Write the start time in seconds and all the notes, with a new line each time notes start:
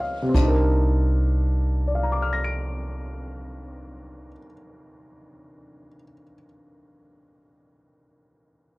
Already playing: C#2 F3 B3 C#4 D#4 G#4 B4 C#5 D#5
0.00 F5
0.22 C3
0.29 C4
0.34 C2 D4, kick, china
0.41 D#4
0.48 A#4
1.87 D5
1.95 F5
2.03 A#5
2.12 D6
2.22 F6
2.33 A#6
2.44 D7